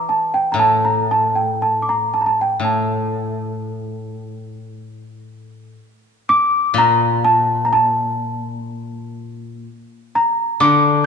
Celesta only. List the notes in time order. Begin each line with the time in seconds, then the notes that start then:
0.09 A5
0.34 G5
0.52 A#5
0.59 A5
0.85 A#5
1.11 A5
1.35 G5
1.62 A5
1.82 D6
1.89 A#5
2.14 A5
2.21 A#5
2.26 A5
2.41 G5
2.65 A5
6.29 D6
6.78 A#5
7.25 A5
7.65 A#5
7.73 A5
10.15 A#5
10.61 D6